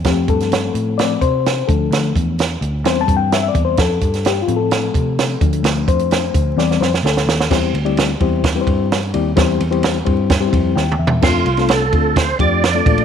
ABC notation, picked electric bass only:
X:1
M:4/4
L:1/8
Q:1/4=129
K:F
V:1 name="Picked electric bass" clef=bass
F,, G,,2 A,,2 C,2 D,, | D,, E,,2 D,, E,, G,,2 E,, | F,, G,,2 A,,2 C,2 D,, | D,, F,,2 D,, E,, F,, D,, _E,, |
E,, D,,2 E,,2 G,,2 _E,, | E,, E,,2 G,,2 F,, _E,, =E,, | F,, C,,2 D,,2 F,,2 B,,, |]